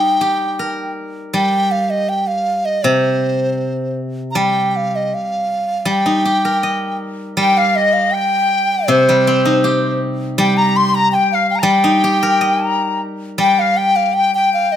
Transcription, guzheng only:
0.00 1.32 G3 medium
0.00 1.35 D#4 soft
0.21 1.73 G4 soft
0.59 2.11 A#4 soft
1.34 3.61 G3 soft
2.84 5.11 C3 medium
4.35 5.84 G3 medium
5.85 7.36 G3 soft
6.06 7.59 D#4 soft
6.25 7.78 G4 soft
6.45 7.97 A#4 soft
6.63 8.15 D#5 soft
7.37 9.07 G3 medium
8.88 11.13 C3 medium
9.09 10.37 G3 soft
9.27 10.76 C4 soft
9.45 10.95 D#4 soft
9.64 11.14 G4 soft
10.38 11.62 G3 medium
11.63 13.37 G3 medium
11.84 13.35 D#4 soft
12.04 13.55 G4 soft
12.23 13.74 A#4 soft
12.41 13.92 D#5 soft
13.38 14.76 G3 medium

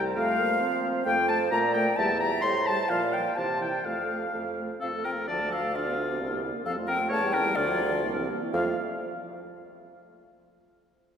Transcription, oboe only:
0.17 0.83 F5 loud
1.06 1.27 G5 loud
1.28 1.39 A5 loud
1.51 1.73 A#5 loud
1.74 1.85 G5 loud
1.98 2.19 A5 loud
2.20 2.31 A#5 loud
2.42 2.68 C6 loud
2.66 2.91 A5 loud
2.90 3.15 F5 loud
3.13 3.39 G5 medium
3.37 3.61 A5 medium
3.62 3.87 G5 medium
3.85 4.58 F5 medium
4.81 5.07 A4 loud
5.05 5.27 A#4 medium
5.27 5.51 D5 loud
5.51 5.74 A4 medium
5.75 6.41 F4 medium
6.65 6.75 A4 loud
6.88 6.98 A#4 loud
7.09 7.35 C#5 loud
7.33 7.58 A#4 loud
7.56 8.30 F4 loud
8.55 8.76 F5 medium

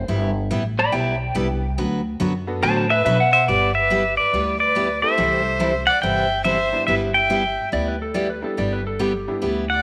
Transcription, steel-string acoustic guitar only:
0.08 0.30 G3 medium
0.08 0.30 B3 medium
0.08 0.30 E4 medium
0.08 0.30 G4 medium
0.51 0.62 G3 medium
0.51 0.62 B3 medium
0.51 0.62 E4 medium
0.51 0.62 G4 medium
0.92 1.14 G3 medium
0.92 1.14 B3 medium
0.92 1.15 E4 medium
0.92 1.15 G4 medium
1.35 1.47 G3 medium
1.35 1.47 B3 medium
1.35 1.47 E4 medium
1.35 1.47 G4 medium
1.78 2.00 D3 medium
1.78 2.00 F#3 medium
1.78 2.00 B3 medium
1.78 2.00 F#4 medium
1.78 2.00 B4 medium
2.20 2.32 D3 medium
2.20 2.32 F#3 medium
2.20 2.32 B3 medium
2.20 2.32 F#4 medium
2.20 2.32 B4 medium
2.62 2.85 D3 medium
2.62 2.85 F#3 medium
2.62 2.85 B3 medium
2.62 2.85 F#4 medium
2.62 2.85 B4 medium
3.06 3.17 D3 medium
3.06 3.17 F#3 medium
3.06 3.17 B3 medium
3.06 3.17 F#4 medium
3.06 3.18 B4 medium
3.48 3.70 G3 medium
3.48 3.70 B3 medium
3.48 3.70 E4 medium
3.48 3.70 G4 medium
3.90 4.02 G3 medium
3.90 4.02 B3 medium
3.90 4.02 E4 medium
3.90 4.02 G4 medium
4.33 4.55 G3 medium
4.33 4.55 B3 medium
4.33 4.55 E4 medium
4.33 4.56 G4 medium
4.75 4.87 G3 medium
4.75 4.87 B3 medium
4.75 4.87 E4 medium
4.75 4.87 G4 medium
5.17 5.40 C3 medium
5.17 5.40 E3 medium
5.17 5.40 G3 medium
5.17 5.40 C4 medium
5.17 5.40 E4 medium
5.17 5.40 A4 medium
5.60 5.72 C3 medium
5.60 5.72 E3 medium
5.60 5.72 G3 medium
5.60 5.72 C4 medium
5.60 5.72 E4 medium
5.60 5.72 A4 medium
6.03 6.25 C3 medium
6.03 6.25 E3 medium
6.03 6.25 G3 medium
6.03 6.25 C4 medium
6.03 6.25 E4 medium
6.03 6.25 A4 medium
6.44 6.56 C3 medium
6.44 6.57 E3 medium
6.44 6.57 G3 medium
6.44 6.57 C4 medium
6.44 6.57 E4 medium
6.44 6.57 A4 medium
6.88 7.10 G3 medium
6.88 7.10 B3 medium
6.88 7.10 E4 medium
6.88 7.10 G4 medium
7.30 7.42 G3 medium
7.30 7.42 B3 medium
7.30 7.42 E4 medium
7.30 7.42 G4 medium
7.72 7.94 G3 medium
7.72 7.94 B3 medium
7.72 7.95 E4 medium
7.72 7.95 G4 medium
8.14 8.26 G3 medium
8.14 8.27 B3 medium
8.14 8.27 E4 medium
8.14 8.27 G4 medium
8.57 8.80 G3 medium
8.57 8.80 B3 medium
8.57 8.80 E4 medium
8.57 8.80 G4 medium
8.99 9.11 G3 medium
8.99 9.12 B3 medium
8.99 9.12 E4 medium
8.99 9.12 G4 medium
9.42 9.64 G3 medium
9.42 9.64 B3 medium
9.42 9.64 E4 medium
9.42 9.64 G4 medium

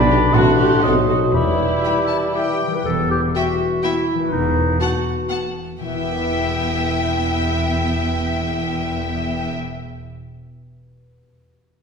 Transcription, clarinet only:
0.00 0.86 D4 medium
0.84 1.35 F#4 soft
1.34 2.34 G4 soft
2.35 2.76 G4 soft
2.75 2.85 B4 soft
2.85 3.10 A4 medium
3.11 3.21 G4 medium
3.35 3.83 F#4 medium
3.84 4.31 E4 medium
4.31 4.79 D#4 medium
4.81 5.29 F#4 medium
5.81 9.52 E4 soft

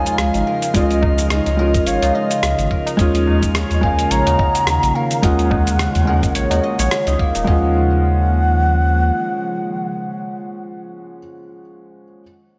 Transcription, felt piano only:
0.00 0.74 G#3 loud
0.00 0.75 C#4 loud
0.00 0.76 F4 loud
0.74 0.91 G#3 loud
0.74 0.91 C#4 medium
0.74 0.92 F4 loud
1.57 2.95 G#3 medium
1.57 2.96 C#4 medium
1.61 2.97 F4 medium
2.97 3.79 G#3 loud
2.97 3.80 C#4 loud
2.97 3.81 F4 loud
3.81 5.19 G#3 medium
3.81 5.20 C#4 medium
3.81 5.21 F5 loud
5.22 5.39 G#3 loud
5.22 5.40 C#4 medium
5.22 5.40 F4 loud
6.05 7.43 G#3 medium
6.05 7.44 C#4 medium
6.09 7.45 F#5 medium
7.44 11.16 G#3 medium
7.44 11.18 C#4 medium
7.50 11.19 F3 medium

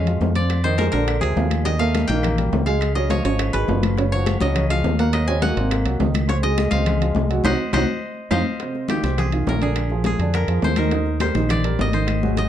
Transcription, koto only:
0.00 0.52 A4 medium
0.00 0.42 C#5 medium
0.00 0.42 D#5 medium
0.00 1.21 F5 medium
0.36 1.71 D5 medium
0.64 2.35 C5 medium
0.78 0.84 A#4 medium
0.92 2.76 A#4 medium
1.21 2.14 G#4 medium
1.65 2.95 D#5 loud
1.79 2.66 F5 loud
2.08 3.42 G5 loud
2.66 4.10 F5 medium
2.95 4.41 D#5 medium
3.10 3.25 C#5 medium
3.25 4.12 C#5 medium
3.53 5.31 B4 medium
4.12 5.78 C#5 medium
4.41 5.12 D#5 medium
4.70 5.05 F5 loud
4.99 5.42 F#5 medium
5.13 6.43 D#5 medium
5.28 6.58 G#5 loud
5.42 6.77 F#5 loud
6.29 6.35 C#5 medium
6.43 7.45 D#5 loud
6.71 7.51 F5 loud
7.44 7.73 C5 loud
7.44 7.74 D#5 medium
7.44 7.73 F#5 medium
7.73 8.31 C5 medium
7.73 8.32 D#5 loud
7.73 8.37 F#5 loud
8.31 10.03 C5 medium
8.31 9.87 D#5 medium
8.31 9.75 F5 medium
8.90 9.25 G4 medium
9.19 9.62 G#4 medium
9.49 10.34 A#4 medium
9.62 10.06 G#4 medium
10.06 12.03 G#4 medium
10.35 10.77 A#4 medium
10.64 11.21 C5 medium
10.77 12.49 A#4 medium
11.21 11.93 C5 medium
11.51 11.87 D5 medium
11.81 12.38 D#5 medium
11.94 12.49 C5 medium
12.38 12.49 D#5 medium

